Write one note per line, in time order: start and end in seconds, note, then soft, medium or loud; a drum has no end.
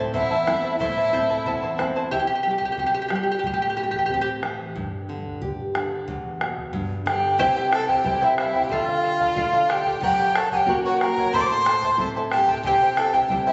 0.00 0.12 A2 medium
0.00 0.34 A3 medium
0.00 0.34 C4 soft
0.00 0.13 E4 medium
0.00 0.34 E4 medium
0.00 0.14 A4 soft
0.00 0.14 C5 medium
0.00 0.12 E5 medium
0.00 0.14 A5 medium
0.14 0.78 E2 medium
0.14 0.31 E4 medium
0.14 0.77 E4 medium
0.14 0.30 C5 medium
0.14 0.31 E5 medium
0.14 0.76 E5 loud
0.14 0.29 A5 medium
0.14 bombo low medium
0.30 0.46 E4 medium
0.30 0.47 C5 medium
0.30 0.47 A5 medium
0.47 0.74 A3 medium
0.47 0.74 C4 medium
0.47 0.63 E4 medium
0.47 0.74 E4 medium
0.47 0.63 C5 medium
0.47 0.63 E5 medium
0.47 0.62 A5 medium
0.47 bombo rim soft
0.47 bombo low soft
0.63 0.80 E4 soft
0.63 0.80 C5 soft
0.63 0.80 A5 medium
0.79 1.44 A2 medium
0.79 1.75 E4 medium
0.79 0.97 E4 medium
0.79 0.97 A4 medium
0.79 0.96 C5 medium
0.79 1.74 E5 loud
0.79 0.97 E5 medium
0.79 0.96 A5 medium
0.79 bombo low medium
0.97 1.13 E4 soft
0.97 1.13 C5 soft
0.97 1.13 A5 medium
1.12 1.65 A3 soft
1.12 1.65 C4 soft
1.12 1.66 E4 medium
1.12 1.29 E4 medium
1.12 1.30 A4 medium
1.12 1.29 C5 medium
1.12 1.29 E5 medium
1.12 1.28 A5 medium
1.12 bombo low medium
1.30 1.45 E4 medium
1.30 1.47 A4 medium
1.30 1.46 C5 medium
1.30 1.45 E5 medium
1.30 1.46 A5 medium
1.30 bombo low medium
1.46 2.10 E2 medium
1.46 1.63 E4 medium
1.46 1.62 C5 medium
1.46 1.63 E5 medium
1.46 1.62 A5 medium
1.46 bombo low medium
1.63 1.77 E4 medium
1.63 1.78 C5 medium
1.63 1.78 A5 medium
1.78 2.05 A3 medium
1.78 2.06 C4 soft
1.78 1.95 E4 medium
1.78 2.06 E4 medium
1.78 1.95 C5 medium
1.78 1.95 E5 medium
1.78 1.94 A5 medium
1.78 bombo rim soft
1.78 bombo low soft
1.96 2.11 E4 soft
1.96 2.12 C5 medium
1.96 2.12 A5 medium
2.11 2.76 C3 medium
2.11 2.19 E4 medium
2.11 2.18 G4 medium
2.11 bombo low medium
2.20 2.26 G4 medium
2.27 2.34 G4 medium
2.35 2.42 G4 medium
2.43 2.77 G3 soft
2.43 2.49 G4 medium
2.51 2.57 G4 medium
2.58 2.64 G4 medium
2.58 bombo low soft
2.65 2.71 G4 medium
2.72 2.78 G4 medium
2.77 3.10 C3 soft
2.77 2.85 G4 medium
2.77 bombo low medium
2.86 2.93 G4 medium
2.94 3.01 G4 medium
3.02 3.07 G4 medium
3.08 3.43 G3 medium
3.08 3.14 G4 medium
3.08 bombo rim soft
3.15 3.22 G4 medium
3.23 3.30 G4 soft
3.31 3.38 G4 medium
3.39 3.46 G4 medium
3.44 4.72 A2 medium
3.44 3.52 G4 medium
3.44 bombo low medium
3.54 3.61 G4 medium
3.62 3.69 G4 medium
3.70 3.76 G4 medium
3.76 4.09 E3 soft
3.76 3.82 G4 medium
3.83 3.90 G4 medium
3.91 3.97 G4 medium
3.91 bombo low soft
3.99 4.05 G4 medium
4.06 4.42 C4 medium
4.06 4.13 G4 medium
4.06 bombo low medium
4.14 4.20 G4 medium
4.21 4.29 G4 medium
4.43 4.75 E3 medium
4.43 bombo rim medium
4.76 6.04 G2 medium
4.76 bombo low medium
5.09 5.41 D3 soft
5.26 bombo low medium
5.41 5.74 G4 soft
5.41 bombo low medium
5.75 6.07 D3 medium
5.75 bombo rim soft
6.08 6.72 E2 medium
6.08 bombo low medium
6.41 6.73 B2 soft
6.41 bombo rim soft
6.58 bombo low soft
6.73 7.37 G2 medium
6.73 bombo low medium
7.06 7.38 D3 medium
7.06 7.38 G4 medium
7.06 7.38 G5 medium
7.06 bombo rim soft
7.38 8.66 C3 medium
7.38 7.56 E4 medium
7.38 7.56 G4 medium
7.38 7.70 G4 medium
7.38 7.56 C5 medium
7.38 7.56 E5 medium
7.38 7.55 G5 medium
7.38 7.71 G5 loud
7.38 bombo low medium
7.56 7.71 E4 soft
7.56 7.72 C5 soft
7.56 7.72 G5 medium
7.72 7.87 E4 medium
7.72 7.88 A4 medium
7.72 7.88 C5 medium
7.72 7.88 E5 medium
7.72 7.87 G5 medium
7.72 7.88 A5 medium
7.72 bombo rim medium
7.88 8.04 E4 medium
7.88 8.05 G4 medium
7.88 8.24 G4 medium
7.88 8.05 C5 medium
7.88 8.04 E5 medium
7.88 8.05 G5 medium
7.88 8.26 G5 medium
7.88 bombo low medium
8.03 8.68 G3 medium
8.03 8.68 C4 soft
8.03 8.68 E4 medium
8.03 8.21 E4 medium
8.03 8.21 C5 medium
8.03 8.21 E5 medium
8.03 8.20 G5 medium
8.03 bombo low medium
8.21 8.38 E4 medium
8.21 8.38 G4 medium
8.21 8.38 C5 medium
8.21 8.37 E5 medium
8.21 8.39 E5 medium
8.21 8.38 G5 medium
8.38 8.65 E4 medium
8.38 8.55 E4 medium
8.38 8.54 C5 medium
8.38 8.55 E5 medium
8.38 8.44 F5 medium
8.38 8.54 G5 medium
8.38 bombo rim medium
8.43 8.66 E5 medium
8.55 8.71 E4 soft
8.55 8.71 C5 soft
8.55 8.71 G5 medium
8.55 bombo low medium
8.64 8.74 G4 medium
8.64 8.73 G5 medium
8.69 9.97 D3 medium
8.69 9.72 F4 medium
8.69 8.87 A4 medium
8.69 8.87 D5 medium
8.69 8.86 E5 loud
8.69 8.86 F5 medium
8.69 bombo low medium
8.86 9.03 D5 soft
8.86 9.71 F5 loud
8.86 9.04 F5 medium
9.04 9.20 A4 medium
9.04 9.19 D5 medium
9.04 9.19 F5 medium
9.20 9.35 A4 medium
9.20 9.36 D5 medium
9.20 9.37 F5 medium
9.20 bombo low medium
9.35 9.99 A3 medium
9.35 10.00 D4 soft
9.35 10.00 F4 medium
9.35 9.52 A4 medium
9.35 9.52 D5 medium
9.35 9.51 F5 medium
9.35 bombo low medium
9.53 9.68 A4 medium
9.53 9.69 D5 medium
9.53 9.69 F5 medium
9.69 10.02 G4 medium
9.69 9.86 A4 medium
9.69 9.86 D5 medium
9.69 9.85 F5 medium
9.69 10.01 G5 loud
9.69 bombo rim medium
9.86 10.03 D5 soft
9.86 10.02 F5 medium
9.86 bombo low medium
10.00 11.28 F#2 medium
10.00 10.37 G4 medium
10.00 10.19 A#4 medium
10.00 10.19 C#5 medium
10.00 10.18 F#5 medium
10.00 10.38 G5 loud
10.00 bombo low medium
10.19 10.36 C#5 soft
10.19 10.35 F#5 medium
10.35 10.51 A4 medium
10.35 10.52 A#4 medium
10.35 10.52 C#5 medium
10.35 10.52 F#5 medium
10.35 10.52 A5 loud
10.35 bombo rim medium
10.51 10.82 G4 medium
10.51 10.67 A#4 medium
10.51 10.68 C#5 medium
10.51 10.68 F#5 medium
10.51 10.58 G#5 medium
10.51 bombo low medium
10.57 10.82 G5 medium
10.65 11.30 A#3 soft
10.65 11.30 C#4 soft
10.65 11.30 F#4 medium
10.65 10.84 A#4 medium
10.65 10.84 C#5 medium
10.65 bombo low medium
10.70 10.84 F#5 medium
10.84 10.99 F#4 medium
10.84 11.00 A#4 medium
10.84 11.01 C#5 medium
10.84 11.01 F#5 medium
10.84 11.00 F#5 medium
11.00 11.35 A#4 medium
11.00 11.17 A#4 medium
11.00 11.18 C#5 medium
11.00 11.17 F#5 medium
11.00 11.36 A#5 loud
11.00 bombo rim medium
11.17 11.34 C#5 soft
11.17 11.34 F#5 medium
11.17 bombo low medium
11.32 12.60 A2 medium
11.32 11.50 E4 medium
11.32 11.50 A4 medium
11.32 11.41 C5 loud
11.32 11.50 C5 medium
11.32 11.50 E5 medium
11.32 11.50 A5 medium
11.32 11.43 C6 loud
11.32 bombo low medium
11.40 11.48 D5 medium
11.40 11.50 D6 medium
11.47 12.04 C5 loud
11.47 11.66 A5 medium
11.47 12.05 C6 loud
11.51 11.66 E4 soft
11.51 11.66 A4 medium
11.66 11.83 E4 medium
11.66 11.83 A4 medium
11.66 11.82 E5 medium
11.66 11.82 A5 medium
11.66 bombo rim medium
11.82 11.99 E4 medium
11.82 11.99 A4 medium
11.82 12.00 C5 medium
11.82 11.99 E5 medium
11.82 11.99 A5 medium
11.82 bombo low medium
11.97 12.61 A3 soft
11.97 12.61 C4 soft
11.97 12.62 E4 medium
11.97 12.16 E4 medium
11.97 12.15 A4 medium
11.97 12.16 E5 medium
11.97 bombo low medium
12.01 12.15 A5 medium
12.16 12.31 E4 medium
12.16 12.32 A4 medium
12.16 12.32 C5 medium
12.16 12.31 E5 medium
12.16 12.32 A5 medium
12.31 12.48 E4 medium
12.31 12.61 G4 medium
12.31 12.48 A4 medium
12.31 12.48 E5 medium
12.31 12.62 G5 loud
12.31 12.47 A5 medium
12.31 bombo rim medium
12.48 12.65 E4 soft
12.48 12.65 A4 medium
12.48 12.64 A5 medium
12.48 bombo low medium
12.63 13.53 C3 medium
12.63 12.82 E4 medium
12.63 12.99 G4 medium
12.63 12.82 G4 medium
12.63 12.82 C5 loud
12.63 12.81 E5 medium
12.63 12.81 G5 medium
12.63 12.69 G#5 loud
12.63 bombo low medium
12.68 13.00 G5 loud
12.82 12.98 E4 soft
12.82 12.98 C5 medium
12.82 12.97 G5 medium
12.97 13.13 E4 medium
12.97 13.15 A4 medium
12.97 13.13 C5 medium
12.97 13.13 E5 medium
12.97 13.12 G5 medium
12.97 13.16 A5 medium
12.97 bombo rim medium
13.13 13.29 E4 medium
13.13 13.46 G4 medium
13.13 13.30 G4 medium
13.13 13.30 C5 medium
13.13 13.29 E5 medium
13.13 13.30 G5 medium
13.13 13.46 G5 loud
13.13 bombo low medium
13.28 13.53 G3 medium
13.28 13.53 C4 soft
13.28 13.53 E4 medium
13.28 13.46 E4 medium
13.28 13.46 C5 medium
13.28 13.46 E5 medium
13.28 13.45 G5 medium
13.28 bombo low medium
13.46 13.53 E4 medium
13.46 13.53 G4 medium
13.46 13.53 C5 medium
13.46 13.53 E5 medium
13.46 13.53 G5 medium